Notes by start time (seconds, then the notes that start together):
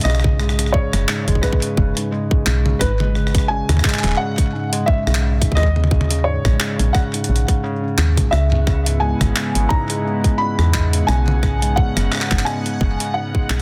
0.01 B1 C#3 D#5, cross-stick, closed hi-hat
0.10 cross-stick
0.15 cross-stick
0.20 cross-stick
0.24 G#2, kick, mid tom
0.39 G#3, cross-stick
0.49 cross-stick
0.59 C#3, cross-stick, closed hi-hat
0.66 cross-stick
0.72 C#3 C#5, kick
0.93 F#1 C#3, cross-stick, closed hi-hat
1.08 G#2, cross-stick, clap
1.28 F#1 G#3, kick, closed hi-hat
1.35 kick
1.41 C#3 B4, kick, cross-stick
1.53 kick
1.62 C#3, closed hi-hat
1.77 F#1 C#3, kick
1.97 G#2, closed hi-hat
2.12 G#3
2.31 C#3, kick
2.46 B1 C#3, clap
2.66 C#3, mid tom
2.79 G#1 G#2 B4, kick, cross-stick, closed hi-hat
3.00 G#3, mid tom
3.15 C#3, cross-stick
3.27 cross-stick
3.35 C#3, kick, cross-stick, closed hi-hat
3.48 C#3 G#5
3.69 D#2 G#2, cross-stick, closed hi-hat, mid tom
3.77 cross-stick, mid tom
3.84 G#3, kick, cross-stick, clap, mid tom
3.89 cross-stick, clap
3.94 clap, mid tom
3.99 clap
4.04 D#1 C#3, clap, closed hi-hat
4.08 clap
4.11 clap
4.15 C#3 F#5, clap
4.38 C#3, kick, closed hi-hat
4.53 G#2
4.73 G#3, closed hi-hat
4.86 C#3 E5, kick
5.07 B1 C#3, cross-stick
5.15 clap
5.22 C#3
5.42 G#2, kick, closed hi-hat
5.52 D#5, kick
5.57 D#2 G#3, cross-stick
5.63 kick
5.76 C#3, mid tom
5.84 mid tom
5.91 C#3, kick, mid tom
6.01 mid tom
6.11 C#3, closed hi-hat
6.24 G#2 C#5
6.45 A#1 G#3, kick, cross-stick
6.60 C#3, cross-stick, clap
6.79 A#1 C#3, closed hi-hat
6.93 C#3 F#5, kick, cross-stick
7.14 G#2, closed hi-hat
7.24 closed hi-hat
7.29 A#1 C#3
7.36 closed hi-hat
7.48 C#3, kick, closed hi-hat
7.64 C#3
7.83 C#4
7.98 D#2 C#3, clap
8.17 A#1 C#2, kick, closed hi-hat, mid tom
8.31 C#2 C#3 G#3 B3 E4 E5 F#5, cross-stick
8.52 C#3, mid tom
8.67 C#3, kick, cross-stick
8.86 G#2, closed hi-hat
9.00 G#3 G#5
9.21 G#1 C#3, kick, cross-stick, closed hi-hat, mid tom
9.36 C#3, cross-stick, clap
9.55 G#1 C#3, closed hi-hat
9.69 G#2 A#5, kick
9.90 G#3, closed hi-hat
10.05 C#3
10.24 C#3, kick, closed hi-hat
10.38 C#3 B5
10.59 E2 G#2, cross-stick
10.74 G#3, kick, clap
10.93 C#3, closed hi-hat
11.07 B1 C#3 B3 C#4 D#4 G#5, cross-stick
11.28 C#3, mid tom
11.43 G#2, kick, cross-stick
11.62 G#3, closed hi-hat
11.76 C#3 F#5, kick
11.97 F#1 C#3, cross-stick, closed hi-hat
12.12 C#3, cross-stick, clap
12.15 cross-stick
12.17 cross-stick
12.20 cross-stick, clap
12.23 cross-stick
12.26 cross-stick
12.29 F#1 G#2, kick, cross-stick, clap
12.39 clap
12.45 G#3 G#5, cross-stick
12.66 C#3, closed hi-hat
12.81 F#1 C#3, kick
13.00 C#3, closed hi-hat
13.14 G#2 F#5
13.35 G#3, kick
13.50 B1, clap